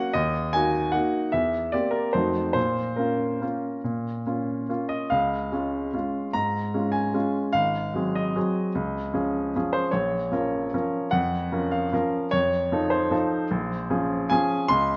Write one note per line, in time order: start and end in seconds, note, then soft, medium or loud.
0.00 0.11 A#3 soft
0.00 0.11 C#4 soft
0.00 0.12 F#4 soft
0.00 0.14 F#5 medium
0.13 0.53 D#2 medium
0.13 0.53 D#5 medium
0.53 0.90 A#3 soft
0.53 0.91 D#4 soft
0.53 0.91 F#4 soft
0.53 0.93 G#5 medium
0.92 1.29 A#3 soft
0.92 1.29 D#4 soft
0.92 1.30 F#4 soft
0.92 1.32 F#5 medium
1.32 1.72 E2 soft
1.32 1.72 E5 medium
1.72 2.10 A#3 soft
1.72 2.10 C4 soft
1.72 2.10 G4 soft
1.72 1.93 D5 medium
1.91 2.13 A#4 medium
2.13 2.55 F2 soft
2.13 2.53 A3 soft
2.13 2.53 D#4 soft
2.13 2.53 F#4 soft
2.13 2.52 C5 medium
2.53 2.97 A#2 soft
2.53 2.97 C5 medium
2.96 3.38 A#3 soft
2.96 3.38 C#4 soft
2.96 3.39 F4 soft
2.96 4.90 A#4 soft
3.41 3.80 A#3 soft
3.41 3.80 C#4 soft
3.41 3.81 F4 soft
3.84 4.25 A#2 soft
4.26 4.65 A#3 soft
4.26 4.66 C#4 soft
4.26 4.66 F4 soft
4.69 5.08 A#3 soft
4.69 5.08 C#4 soft
4.69 5.08 F4 soft
4.89 5.11 D#5 medium
5.10 5.51 C#2 soft
5.10 6.33 F5 medium
5.52 5.90 G#3 soft
5.52 5.90 C#4 soft
5.52 5.90 F4 soft
5.94 6.30 G#3 soft
5.94 6.30 C#4 soft
5.94 6.31 F4 soft
6.33 6.73 G#2 soft
6.33 6.94 A#5 medium
6.74 7.11 G#3 soft
6.74 7.11 C#4 soft
6.74 7.12 F4 soft
6.92 7.55 G#5 medium
7.14 7.51 G#3 soft
7.14 7.51 C#4 soft
7.14 7.52 F4 soft
7.53 7.93 G#1 soft
7.53 8.14 F5 medium
7.94 8.31 F#3 soft
7.94 8.32 C4 soft
7.94 8.32 G#4 soft
8.15 9.74 D#5 medium
8.36 8.71 F#3 soft
8.36 8.72 C4 soft
8.36 8.72 G#4 soft
8.75 9.13 C#2 medium
9.14 9.50 F3 soft
9.14 9.50 C#4 soft
9.14 9.51 G#4 soft
9.56 9.91 F3 soft
9.56 9.91 C#4 soft
9.56 9.91 G#4 soft
9.73 9.93 C5 medium
9.91 10.31 A#1 soft
9.91 11.11 C#5 medium
10.32 10.69 F3 soft
10.32 10.69 C#4 soft
10.32 10.69 A#4 soft
10.74 11.09 F3 soft
10.74 11.09 C#4 soft
10.74 11.09 A#4 soft
11.11 11.50 F2 medium
11.11 11.71 F#5 medium
11.52 11.88 F3 soft
11.52 11.89 C#4 soft
11.52 11.89 A#4 soft
11.71 12.32 F5 medium
11.93 12.29 F3 soft
11.93 12.29 C#4 soft
11.93 12.29 A#4 soft
12.31 12.71 F2 soft
12.31 12.91 C#5 medium
12.72 13.08 F3 soft
12.72 13.08 D#4 soft
12.72 13.09 A4 soft
12.90 14.31 C5 medium
13.11 13.47 F3 soft
13.11 13.47 D#4 soft
13.11 13.47 A4 soft
13.51 13.89 A#1 medium
13.90 14.28 F3 soft
13.90 14.28 C#4 soft
13.90 14.28 G#4 soft
14.30 14.68 F3 soft
14.30 14.68 C#4 soft
14.30 14.68 G#4 medium
14.30 14.71 G#5 medium
14.68 14.97 C#2 medium
14.68 14.97 C6 loud